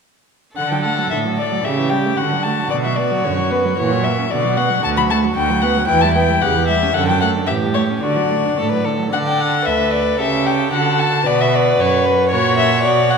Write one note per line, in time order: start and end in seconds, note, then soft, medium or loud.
0.56 1.02 D3 soft
0.56 0.73 D3 soft
0.56 1.66 A4 soft
0.56 0.73 F#5 medium
0.71 0.87 F#3 soft
0.71 0.83 G5 soft
0.84 1.00 A3 soft
0.84 1.10 F#5 soft
0.98 1.14 F#3 soft
1.11 1.56 A2 soft
1.11 1.27 D3 soft
1.11 1.19 E5 soft
1.25 1.40 F#3 soft
1.38 1.53 A3 soft
1.38 1.66 D5 medium
1.52 1.64 F#3 soft
1.64 2.09 C#3 soft
1.64 1.79 C#3 soft
1.64 2.20 G4 soft
1.64 1.91 E5 medium
1.78 1.93 E3 soft
1.90 2.07 G3 soft
1.90 2.18 G5 medium
2.06 2.19 A3 soft
2.17 2.63 D3 soft
2.17 2.34 D3 soft
2.17 4.30 F#4 soft
2.17 2.45 F#5 medium
2.33 2.47 F#3 soft
2.43 2.60 A3 soft
2.43 2.70 A5 medium
2.58 2.72 F#3 soft
2.70 3.16 B2 soft
2.70 2.88 D3 soft
2.70 2.76 D5 medium
2.85 3.00 F#3 soft
2.85 2.97 E5 medium
2.96 3.13 B3 soft
2.96 3.26 D5 soft
3.11 3.26 F#3 soft
3.24 3.70 F#2 soft
3.24 3.40 D3 soft
3.24 3.53 C#5 medium
3.39 3.52 F#3 soft
3.51 3.67 B3 soft
3.51 3.77 B4 soft
3.65 3.78 F#3 soft
3.77 4.23 A#2 medium
3.77 3.93 E3 soft
3.77 4.05 C#5 medium
3.91 4.07 F#3 soft
4.04 4.20 A#3 soft
4.04 4.32 E5 medium
4.19 4.31 C#4 soft
4.30 4.76 B2 soft
4.30 4.46 D3 soft
4.30 5.86 F#4 soft
4.30 4.59 D5 medium
4.44 4.59 F#3 soft
4.57 4.72 B3 soft
4.57 4.83 F#5 medium
4.71 4.84 F#3 soft
4.84 5.28 D2 medium
4.84 4.99 D3 medium
4.84 4.89 A5 medium
4.97 5.13 F#3 soft
4.97 5.02 B5 medium
5.10 5.26 A3 soft
5.10 5.18 A5 medium
5.25 5.37 F#3 soft
5.36 5.81 D2 medium
5.36 5.52 D3 soft
5.36 5.63 G5 medium
5.50 5.65 F#3 soft
5.62 5.78 B3 soft
5.62 5.87 F#5 medium
5.77 5.90 F#3 soft
5.87 6.33 E2 medium
5.87 6.05 E3 medium
5.87 6.43 E4 soft
5.87 6.03 G5 medium
6.01 6.17 G3 soft
6.01 6.13 A5 medium
6.13 6.31 B3 soft
6.13 6.43 G5 medium
6.30 6.43 G3 soft
6.41 6.87 E2 medium
6.41 6.58 C#3 soft
6.41 6.95 G4 medium
6.41 6.67 F#5 medium
6.56 6.71 E3 soft
6.68 6.84 G3 soft
6.68 6.96 E5 medium
6.83 6.95 C#4 soft
6.94 7.40 F#2 medium
6.94 7.11 D3 medium
6.94 7.49 A4 soft
6.94 7.08 F#5 medium
7.08 7.24 F#3 soft
7.08 7.21 G5 medium
7.21 7.37 A3 soft
7.21 7.29 F#5 medium
7.36 7.49 D4 soft
7.47 7.94 A2 soft
7.47 7.65 E3 soft
7.47 8.05 G4 soft
7.47 7.55 E5 medium
7.64 7.78 G3 soft
7.74 7.92 A3 soft
7.74 7.82 C#5 medium
7.91 8.03 C#4 soft
8.02 8.49 D3 medium
8.02 8.18 D3 soft
8.02 8.52 F#4 soft
8.02 8.83 D5 medium
8.16 8.32 F#3 soft
8.30 8.47 A3 soft
8.45 8.60 D4 soft
8.58 9.04 A2 soft
8.58 8.73 A3 soft
8.58 8.71 A4 soft
8.72 8.87 F#3 soft
8.72 8.86 B4 soft
8.84 9.01 D3 soft
8.84 9.12 A4 soft
8.99 9.12 F#3 soft
9.13 9.69 D3 soft
9.13 10.22 A4 soft
9.13 9.63 D5 soft
9.13 9.18 F#5 medium
9.27 9.42 G5 medium
9.40 9.67 F#5 medium
9.65 10.19 D2 soft
9.65 10.20 B4 medium
9.65 9.94 E5 medium
9.93 10.20 D5 medium
10.19 10.72 C#3 medium
10.19 10.75 G4 soft
10.19 10.72 A4 soft
10.19 10.48 E5 medium
10.46 10.72 G5 medium
10.72 11.26 D3 soft
10.72 11.27 F#4 soft
10.72 11.25 A4 medium
10.72 11.01 F#5 medium
11.00 11.28 A5 medium
11.26 11.78 B2 medium
11.26 12.30 F#4 medium
11.26 12.30 B4 medium
11.26 11.42 D5 medium
11.41 11.56 E5 medium
11.55 11.81 D5 medium
11.80 12.35 F#2 medium
11.80 12.07 C#5 medium
12.06 12.31 B4 medium
12.31 12.87 A#2 medium
12.31 12.84 F#4 medium
12.31 13.18 C#5 medium
12.31 12.57 C#5 medium
12.58 12.83 E5 medium
12.83 13.18 B2 medium
12.83 13.18 F#4 medium
12.83 13.12 D5 medium
13.10 13.18 F#5 medium